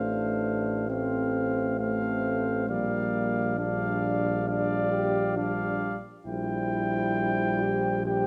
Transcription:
0.00 2.71 A1 soft
0.00 0.86 A3 soft
0.00 0.89 D4 medium
0.00 0.86 C5 soft
0.00 0.86 F5 soft
0.89 1.78 A3 soft
0.89 1.78 C4 medium
0.89 1.78 C5 soft
0.89 1.78 F5 soft
1.80 2.69 A3 soft
1.80 2.67 C4 medium
1.80 2.71 C5 soft
1.80 2.67 F5 soft
2.68 5.99 A#1 medium
2.68 3.57 G3 soft
2.68 3.60 A#3 medium
2.68 3.59 D5 soft
2.68 3.57 F5 soft
3.58 4.46 G3 soft
3.58 4.47 D4 medium
3.58 4.47 D5 soft
3.58 4.46 F5 soft
4.47 5.35 G3 soft
4.47 4.91 D4 medium
4.47 5.36 D5 soft
4.47 5.35 F5 soft
4.92 5.39 G4 medium
5.37 5.97 G3 medium
5.37 5.99 D4 medium
5.37 5.97 D5 soft
5.37 5.98 F5 soft
6.26 8.27 A#1 medium
6.26 8.02 G3 medium
6.26 7.63 E4 medium
6.26 8.03 C5 soft
6.26 8.03 G5 medium
7.61 8.05 G4 medium
8.06 8.27 G3 medium
8.06 8.27 G4 medium
8.06 8.27 C5 soft
8.06 8.27 G5 soft

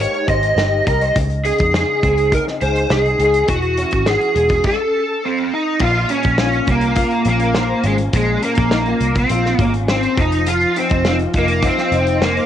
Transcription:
0.00 2.33 G#3 medium
0.00 1.45 D#4 medium
0.00 0.57 G4 medium
0.00 0.29 C5 medium
0.00 0.29 C#5 loud
0.00 closed hi-hat medium
0.14 closed hi-hat soft
0.28 0.51 G#1 medium
0.28 0.87 C5 medium
0.28 0.86 D#5 loud
0.28 kick medium
0.28 closed hi-hat medium
0.43 closed hi-hat soft
0.56 0.80 G1 medium
0.56 1.22 G4 medium
0.56 snare loud
0.87 1.10 C2 medium
0.87 1.02 A#4 medium
0.87 1.14 D#5 medium
0.87 kick medium
0.87 closed hi-hat medium
1.01 1.22 C5 medium
1.01 closed hi-hat medium
1.16 1.51 C#2 medium
1.16 3.49 C#3 medium
1.16 kick loud
1.16 closed hi-hat loud
1.30 closed hi-hat soft
1.45 2.32 D#4 medium
1.45 2.35 G#4 medium
1.45 closed hi-hat medium
1.58 1.83 F2 medium
1.58 kick medium
1.58 closed hi-hat soft
1.74 2.61 G#4 medium
1.74 snare loud
2.03 2.38 C#2 medium
2.03 3.54 C4 medium
2.03 kick medium
2.03 closed hi-hat medium
2.18 closed hi-hat soft
2.32 2.89 D#4 medium
2.32 2.41 A#4 loud
2.32 kick medium
2.32 closed hi-hat medium
2.48 snare soft
2.61 2.85 C#2 medium
2.61 3.19 G#4 medium
2.61 2.89 C5 loud
2.61 closed hi-hat medium
2.76 closed hi-hat soft
2.90 3.14 C2 medium
2.90 3.54 D#4 medium
2.90 3.49 G#4 medium
2.90 snare loud
3.06 closed hi-hat soft
3.19 3.42 C#2 medium
3.19 3.55 G#4 medium
3.19 closed hi-hat medium
3.34 closed hi-hat medium
3.48 3.84 E1 medium
3.48 4.71 E3 medium
3.48 4.09 F#4 medium
3.48 kick loud
3.48 closed hi-hat medium
3.62 closed hi-hat soft
3.77 5.21 C#4 medium
3.77 closed hi-hat medium
3.91 4.16 G#1 medium
3.91 kick medium
3.91 closed hi-hat soft
4.06 4.71 F#4 medium
4.06 4.66 G#4 medium
4.06 snare loud
4.21 closed hi-hat soft
4.35 4.59 E1 medium
4.35 4.70 G#3 medium
4.35 closed hi-hat medium
4.49 kick medium
4.49 closed hi-hat soft
4.64 5.49 A4 medium
4.64 kick loud
4.64 crash medium
5.25 5.51 C4 medium
5.54 5.83 D#4 medium
5.79 6.04 A#1 medium
5.79 8.12 A#2 medium
5.79 6.08 F4 loud
5.79 kick loud
5.79 crash medium
6.09 6.38 C#4 medium
6.09 6.66 C#4 medium
6.09 closed hi-hat medium
6.23 6.60 A#1 medium
6.23 kick medium
6.23 closed hi-hat soft
6.38 6.66 C#4 medium
6.38 6.95 F4 medium
6.38 snare loud
6.53 closed hi-hat soft
6.67 7.03 C2 medium
6.67 7.27 A#3 loud
6.67 7.25 C#4 medium
6.67 kick medium
6.67 closed hi-hat medium
6.81 closed hi-hat soft
6.96 8.71 F4 medium
6.96 kick medium
6.96 closed hi-hat medium
7.11 closed hi-hat soft
7.25 7.73 A#1 medium
7.25 7.82 C#4 medium
7.25 closed hi-hat medium
7.29 7.86 A#3 loud
7.39 closed hi-hat soft
7.54 9.89 C5 medium
7.54 snare loud
7.83 8.07 G#1 medium
7.83 7.94 G#3 medium
7.83 8.42 C#4 medium
7.83 closed hi-hat medium
7.98 closed hi-hat medium
8.13 8.37 A#1 medium
8.13 10.23 A#2 medium
8.13 8.43 G#3 medium
8.13 kick loud
8.13 closed hi-hat loud
8.42 9.18 A#3 medium
8.42 9.01 C#4 medium
8.42 closed hi-hat medium
8.55 8.93 A#1 medium
8.55 kick medium
8.55 closed hi-hat soft
8.71 8.88 D#4 medium
8.71 snare loud
8.86 9.30 F4 medium
8.86 closed hi-hat soft
9.00 9.24 C2 medium
9.00 closed hi-hat medium
9.15 9.59 C4 medium
9.15 kick medium
9.15 closed hi-hat medium
9.29 9.53 A#1 loud
9.29 10.79 F4 medium
9.29 closed hi-hat medium
9.46 snare soft
9.59 10.05 G#1 medium
9.59 9.71 A#3 medium
9.59 10.24 C#4 medium
9.59 kick medium
9.59 closed hi-hat medium
9.74 closed hi-hat medium
9.88 10.19 C4 medium
9.88 12.21 C5 medium
9.88 snare loud
10.03 closed hi-hat soft
10.17 10.64 F1 medium
10.17 10.46 F3 medium
10.17 10.48 D#4 medium
10.17 kick loud
10.17 closed hi-hat medium
10.32 closed hi-hat medium
10.46 12.46 F3 medium
10.46 10.77 F4 loud
10.46 closed hi-hat medium
10.61 closed hi-hat soft
10.76 11.06 C4 medium
10.76 11.34 D#4 medium
10.76 closed hi-hat medium
10.90 11.26 F1 medium
10.90 kick medium
10.90 closed hi-hat medium
11.05 11.15 C4 medium
11.05 11.64 F4 medium
11.05 snare loud
11.19 closed hi-hat soft
11.34 11.69 F1 medium
11.34 11.91 D#4 medium
11.34 kick medium
11.34 closed hi-hat medium
11.38 11.66 A#3 medium
11.48 closed hi-hat medium
11.62 12.24 C4 medium
11.62 12.46 F4 medium
11.62 kick medium
11.62 closed hi-hat medium
11.78 snare soft
11.92 12.38 F1 medium
11.92 12.46 D#4 medium
11.92 closed hi-hat medium
12.07 closed hi-hat soft
12.21 12.46 A#3 medium
12.21 12.46 C5 medium
12.21 snare loud
12.37 closed hi-hat soft

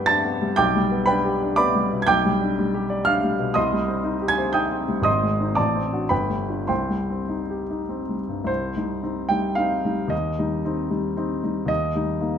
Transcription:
0.00 0.52 G2 medium
0.00 0.42 G3 medium
0.00 0.25 B3 soft
0.00 0.08 D4 soft
0.00 0.62 G4 soft
0.00 0.18 B4 medium
0.00 0.61 F#5 medium
0.00 0.58 G5 medium
0.00 0.57 D6 medium
0.00 0.61 F#6 medium
0.00 0.56 G6 medium
0.06 0.35 D4 medium
0.06 0.54 A5 medium
0.06 0.57 A6 loud
0.25 0.52 B3 soft
0.42 0.58 G3 soft
0.56 2.03 B1 medium
0.56 1.04 G5 medium
0.56 1.04 D6 medium
0.56 1.07 G6 loud
0.76 1.02 G3 medium
0.92 1.18 B3 medium
1.06 1.35 D4 medium
1.06 1.54 B4 medium
1.06 1.54 G5 medium
1.06 1.56 B5 medium
1.25 1.51 G4 medium
1.43 1.69 D4 medium
1.56 1.84 B3 medium
1.56 1.97 D5 medium
1.56 1.97 B5 medium
1.56 2.00 D6 loud
1.75 2.01 G3 medium
1.92 2.08 B2 soft
2.02 2.08 G#6 medium
2.07 3.53 B1 medium
2.07 3.03 G5 medium
2.07 3.03 D6 medium
2.07 3.07 G6 loud
2.25 2.52 G3 medium
2.41 2.68 D4 soft
2.59 2.85 G3 medium
2.74 3.01 G4 medium
2.90 3.17 D5 medium
3.05 3.33 D4 medium
3.05 3.52 F5 medium
3.05 3.55 F6 loud
3.24 3.50 G3 soft
3.39 3.56 B2 soft
3.54 5.02 C2 medium
3.54 4.25 D#5 medium
3.54 4.25 C6 medium
3.54 4.28 D#6 medium
3.73 3.98 G3 medium
3.88 4.14 C4 medium
4.04 4.31 D#4 medium
4.22 4.48 G4 soft
4.28 4.53 G#5 medium
4.28 4.54 G#6 loud
4.38 4.65 C5 medium
4.53 4.82 D#4 medium
4.53 5.02 G5 medium
4.53 5.02 D#6 medium
4.53 5.05 G6 medium
4.71 4.99 C4 soft
4.88 5.06 G3 soft
5.02 5.54 G#1 medium
5.02 5.53 D#5 medium
5.02 5.53 C6 medium
5.02 5.56 D#6 medium
5.22 5.50 G#3 soft
5.40 5.56 C4 soft
5.40 5.56 D#4 soft
5.55 6.09 A1 medium
5.55 6.06 D5 medium
5.55 6.06 A5 medium
5.55 6.10 D6 medium
5.75 6.03 C4 soft
5.93 6.09 D4 soft
5.93 6.09 F#4 soft
6.09 6.68 G1 medium
6.09 6.65 B4 medium
6.09 6.65 G5 medium
6.09 6.68 B5 medium
6.30 6.61 G3 soft
6.49 6.67 D4 soft
6.49 6.68 F4 soft
6.67 8.43 C2 medium
6.67 8.15 C5 medium
6.67 8.15 G5 medium
6.67 8.18 C6 medium
6.90 7.22 G3 soft
7.10 7.42 C4 soft
7.29 7.61 D#4 soft
7.50 7.81 G4 soft
7.71 8.02 D#4 soft
7.89 8.21 C4 soft
8.09 8.41 G3 soft
8.29 8.48 G2 soft
8.44 10.05 C2 soft
8.44 9.29 C5 medium
8.77 9.01 G3 soft
8.77 9.01 D#4 soft
9.03 9.27 C4 soft
9.03 9.28 D#4 soft
9.29 9.55 G3 soft
9.29 9.55 D#4 soft
9.29 9.57 G5 medium
9.55 9.82 C4 soft
9.55 9.82 D#4 soft
9.55 10.10 F5 medium
9.85 10.09 G3 soft
9.85 10.09 D#4 soft
10.08 11.63 D#2 medium
10.08 11.42 D#5 medium
10.39 10.62 G3 soft
10.39 10.63 D#4 soft
10.65 10.88 C4 soft
10.65 10.88 D#4 soft
10.91 11.14 G3 soft
10.91 11.14 D#4 soft
11.17 11.40 C4 soft
11.17 11.41 D#4 soft
11.43 11.67 G3 soft
11.43 11.67 D#4 soft
11.66 12.38 D#2 medium
11.66 12.38 D#5 medium
11.95 12.18 G3 soft
11.95 12.18 D#4 soft
12.21 12.38 A#3 soft
12.21 12.38 D#4 soft

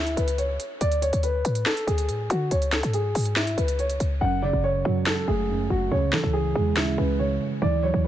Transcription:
0.00 0.16 D2 loud
0.00 0.16 E4 medium
0.07 closed hi-hat medium
0.17 0.58 C#2 loud
0.17 0.36 B4 medium
0.17 closed hi-hat medium
0.28 closed hi-hat medium
0.38 0.78 C#5 medium
0.38 closed hi-hat medium
0.60 closed hi-hat medium
0.81 1.12 D2 loud
0.81 1.00 D5 medium
0.81 closed hi-hat medium
0.92 closed hi-hat medium
1.02 1.22 C#5 medium
1.02 closed hi-hat medium
1.13 1.44 D2 loud
1.13 closed hi-hat medium
1.23 1.64 B4 medium
1.23 closed hi-hat medium
1.45 1.65 A2 loud
1.45 closed hi-hat medium
1.55 closed hi-hat medium
1.66 1.85 A4 loud
1.66 finger snap medium
1.66 snare loud
1.66 closed hi-hat medium
1.77 closed hi-hat medium
1.87 2.10 D2 loud
1.87 2.27 G#4 medium
1.87 closed hi-hat medium
1.98 closed hi-hat medium
2.09 2.29 A2 loud
2.09 closed hi-hat medium
2.30 2.50 D3 loud
2.30 2.49 F#4 medium
2.30 closed hi-hat medium
2.51 2.82 C#2 loud
2.51 2.71 C#5 medium
2.51 closed hi-hat medium
2.62 closed hi-hat medium
2.73 2.92 A4 medium
2.73 finger snap medium
2.73 snare medium
2.73 closed hi-hat medium
2.83 3.14 G#2 loud
2.83 closed hi-hat medium
2.93 3.34 G#4 medium
2.93 closed hi-hat medium
3.15 3.56 G#2 loud
3.15 open hi-hat loud
3.25 closed hi-hat medium
3.36 3.56 E4 medium
3.36 finger snap medium
3.36 snare loud
3.36 closed hi-hat medium
3.47 closed hi-hat medium
3.57 3.98 C#2 loud
3.57 3.77 B4 medium
3.57 closed hi-hat medium
3.68 closed hi-hat medium
3.79 4.19 C#5 medium
3.79 closed hi-hat soft
3.90 closed hi-hat medium
4.00 4.21 C#2 loud
4.00 closed hi-hat medium
4.21 4.52 F#1 loud
4.21 5.05 F#2 medium
4.21 4.41 F#5 medium
4.42 5.49 C#3 medium
4.42 4.62 D5 medium
4.53 4.84 F#1 loud
4.64 5.04 C#5 medium
4.85 5.26 F#2 loud
4.85 5.92 F#3 loud
5.06 5.47 F#2 medium
5.06 5.26 A4 medium
5.06 finger snap medium
5.06 snare loud
5.28 5.69 F#1 loud
5.28 5.92 A3 medium
5.28 5.68 G#4 medium
5.49 5.92 F#2 medium
5.70 5.91 F#1 loud
5.70 5.90 F#4 medium
5.91 6.14 C#2 loud
5.91 6.75 C#3 medium
5.91 6.11 C#5 medium
6.12 6.23 C#3 loud
6.12 7.19 E3 medium
6.12 6.32 A4 medium
6.12 finger snap medium
6.12 snare medium
6.24 6.54 C#2 loud
6.33 6.74 G#4 medium
6.55 6.78 E2 loud
6.55 7.62 G#3 medium
6.77 6.97 D2 loud
6.77 7.18 C#3 medium
6.77 6.97 E4 medium
6.77 finger snap medium
6.77 snare loud
6.98 7.39 C#2 loud
6.98 7.62 C#4 medium
6.98 7.17 B4 medium
7.19 7.62 C#3 medium
7.19 7.59 C#5 medium
7.62 7.93 D2 loud
7.62 8.08 E3 medium
7.62 7.81 D5 medium
7.83 8.08 F#3 medium
7.83 8.03 C#5 medium
7.94 8.08 D2 loud
8.04 8.08 B4 medium

